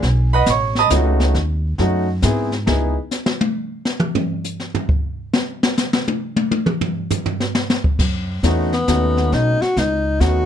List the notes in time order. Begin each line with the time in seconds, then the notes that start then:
Already playing: G#4 G#5
0.02 B1, brush sweep, kick, snare
0.33 B4 D#5 F#5 B5
0.46 A1 C#6, kick, snare, hi-hat pedal
0.51 C#5
0.75 D#5 A5 B5 D#6, snare
0.90 C#2 A3 C#4 D#4 F#4, kick, snare, hi-hat pedal
1.20 snare
1.34 D#2, brush sweep, kick, snare
1.78 F#2 A3 C#4 D#4 F#4, kick, snare
2.22 G#2 B3 C4 E4 G#4, kick, snare, hi-hat pedal
2.52 snare
2.66 C#2 B3 D#4 E4 G#4, snare
3.11 snare, hi-hat pedal
3.26 snare
3.41 high tom
3.85 snare
4.00 mid tom
4.15 floor tom
4.44 hi-hat pedal
4.60 snare
4.75 floor tom
4.89 kick
5.33 snare
5.63 snare
5.78 snare, hi-hat pedal
5.93 snare
6.08 high tom
6.36 high tom
6.51 high tom
6.66 mid tom
6.81 floor tom
7.10 floor tom, hi-hat pedal
7.26 floor tom
7.40 snare
7.55 snare
7.70 snare
7.84 kick
7.99 F#2, brush sweep, kick, snare, crash
8.43 E2 A3 B3 C#4 D#4 F#4, kick, snare, hi-hat pedal
8.72 B3, snare
8.88 D#2 A3 B3 C#4 D#4 F#4, kick, snare, hi-hat pedal
9.17 snare
9.32 B1 D#4, brush sweep, kick, snare
9.61 F#4, muted upright bass stroke, snare
9.77 C#2 D#4, kick, snare, hi-hat pedal
10.20 D#2 A3 B3 C#4 D#4 F#4, kick, snare, hi-hat pedal